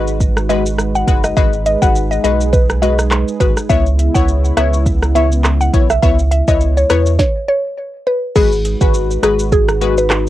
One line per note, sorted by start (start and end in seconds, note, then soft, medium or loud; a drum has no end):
0.00 1.04 G#1 medium
0.00 0.18 G#3 medium
0.00 7.15 G#3 medium
0.00 3.66 D#4 medium
0.00 0.18 F#4 medium
0.00 1.35 F#4 medium
0.00 0.18 B4 medium
0.00 3.66 B4 medium
0.07 shaker medium
0.20 kick medium
0.20 shaker medium
0.37 cross-stick loud
0.37 shaker medium
0.49 0.64 G#3 medium
0.49 0.64 F#4 medium
0.49 0.64 B4 medium
0.49 0.62 D#5 medium
0.49 closed hi-hat medium
0.49 shaker soft
0.66 shaker medium
0.78 cross-stick loud
0.78 shaker medium
0.95 1.05 F#5 medium
0.95 shaker medium
1.07 1.33 F#1 medium
1.07 1.22 G#3 medium
1.07 1.22 F#4 medium
1.07 1.22 B4 medium
1.07 kick medium
1.07 closed hi-hat medium
1.07 shaker medium
1.24 1.34 D#5 medium
1.24 cross-stick medium
1.24 shaker medium
1.37 1.76 G#1 loud
1.37 1.51 G#3 loud
1.37 1.51 F#4 medium
1.37 3.68 G#4 medium
1.37 1.52 B4 loud
1.37 1.49 D#5 loud
1.37 kick loud
1.37 shaker medium
1.53 shaker medium
1.66 1.79 D#5 medium
1.66 closed hi-hat medium
1.66 shaker soft
1.82 2.18 G#1 loud
1.82 2.21 G#3 medium
1.82 2.21 F#4 medium
1.82 2.21 B4 medium
1.82 1.92 F#5 medium
1.82 kick loud
1.82 shaker medium
1.95 shaker medium
2.11 2.21 D#5 medium
2.11 shaker medium
2.24 3.24 B1 medium
2.24 2.51 G#3 medium
2.24 2.51 F#4 medium
2.24 2.51 B4 medium
2.24 2.36 D#5 medium
2.24 closed hi-hat medium
2.24 shaker medium
2.41 shaker medium
2.53 2.65 B4 medium
2.53 kick medium
2.53 shaker medium
2.70 cross-stick loud
2.70 shaker soft
2.82 2.97 G#3 medium
2.82 2.97 F#4 medium
2.82 2.97 B4 medium
2.82 2.95 D#5 medium
2.82 closed hi-hat medium
2.82 shaker soft
2.99 cross-stick loud
2.99 shaker medium
3.11 cross-stick loud
3.11 clap loud
3.11 shaker medium
3.28 shaker medium
3.40 3.55 G#1 medium
3.40 3.55 G#3 medium
3.40 3.55 F#4 medium
3.40 3.53 B4 medium
3.40 3.55 B4 medium
3.40 kick medium
3.40 closed hi-hat medium
3.40 shaker medium
3.57 cross-stick medium
3.57 shaker medium
3.69 4.09 C#2 loud
3.69 7.16 C#3 medium
3.69 3.84 B3 loud
3.69 7.16 B3 medium
3.69 3.84 E4 medium
3.69 7.16 E4 medium
3.69 3.84 C#5 loud
3.69 3.82 E5 loud
3.69 kick loud
3.69 shaker medium
3.86 shaker medium
3.99 closed hi-hat medium
3.99 shaker medium
4.14 4.51 C#2 loud
4.14 4.54 B3 medium
4.14 4.54 E4 medium
4.14 4.54 C#5 medium
4.14 4.24 F#5 medium
4.14 kick loud
4.14 shaker medium
4.28 shaker medium
4.45 shaker medium
4.57 5.70 C#2 medium
4.57 4.84 B3 medium
4.57 4.84 E4 medium
4.57 4.84 C#5 medium
4.57 4.69 E5 medium
4.57 cross-stick loud
4.57 closed hi-hat medium
4.57 shaker medium
4.73 shaker medium
4.86 kick medium
4.86 shaker medium
5.03 cross-stick loud
5.03 shaker medium
5.15 5.30 B3 medium
5.15 5.30 E4 medium
5.15 5.30 C#5 medium
5.15 5.28 E5 medium
5.15 closed hi-hat medium
5.15 shaker soft
5.32 shaker medium
5.44 cross-stick loud
5.44 clap loud
5.44 shaker medium
5.61 5.71 F#5 medium
5.61 shaker medium
5.73 5.99 B1 medium
5.73 5.88 B3 medium
5.73 5.88 E4 medium
5.73 5.88 C#5 medium
5.73 kick loud
5.73 closed hi-hat medium
5.73 shaker medium
5.90 6.00 E5 medium
5.90 cross-stick medium
5.90 shaker medium
6.02 6.42 C#2 loud
6.02 6.17 B3 loud
6.02 6.17 E4 medium
6.02 6.17 C#5 loud
6.02 6.15 E5 medium
6.02 kick loud
6.02 shaker medium
6.19 shaker medium
6.31 6.44 E5 medium
6.31 closed hi-hat medium
6.31 shaker medium
6.48 6.84 C#2 loud
6.48 6.87 B3 medium
6.48 6.87 E4 medium
6.48 6.87 C#5 medium
6.48 6.58 D#5 medium
6.48 kick loud
6.48 shaker medium
6.61 shaker medium
6.77 6.87 C#5 medium
6.77 shaker medium
6.90 7.18 E2 medium
6.90 7.17 B3 medium
6.90 7.17 E4 medium
6.90 7.03 B4 medium
6.90 7.17 C#5 medium
6.90 cross-stick medium
6.90 closed hi-hat medium
6.90 shaker medium
7.06 shaker medium
7.19 7.32 C#5 medium
7.19 kick loud
7.19 snare medium
7.48 7.61 C#5 medium
8.07 8.19 B4 medium
8.36 8.75 G#1 loud
8.36 8.50 G#3 loud
8.36 10.29 G#3 medium
8.36 10.29 D#4 medium
8.36 8.50 F#4 medium
8.36 10.29 F#4 medium
8.36 8.58 G#4 loud
8.36 8.50 B4 loud
8.36 10.29 B4 medium
8.36 kick loud
8.36 crash loud
8.36 shaker medium
8.52 shaker medium
8.65 closed hi-hat medium
8.65 shaker medium
8.81 9.17 G#1 loud
8.81 9.20 G#3 medium
8.81 9.20 F#4 medium
8.81 8.91 B4 medium
8.81 9.20 B4 medium
8.81 kick loud
8.81 shaker medium
8.94 shaker medium
9.11 shaker medium
9.23 10.29 G#1 loud
9.23 9.50 G#3 medium
9.23 9.50 F#4 medium
9.23 9.36 G#4 medium
9.23 9.50 B4 medium
9.23 cross-stick loud
9.23 closed hi-hat medium
9.23 shaker medium
9.39 shaker medium
9.52 9.65 G#4 loud
9.52 kick medium
9.52 shaker medium
9.69 cross-stick loud
9.69 shaker medium
9.81 9.96 G#3 medium
9.81 9.96 F#4 medium
9.81 9.96 B4 medium
9.81 closed hi-hat medium
9.81 shaker soft
9.98 10.08 B4 medium
9.98 shaker medium
10.10 cross-stick loud
10.10 clap loud
10.10 shaker medium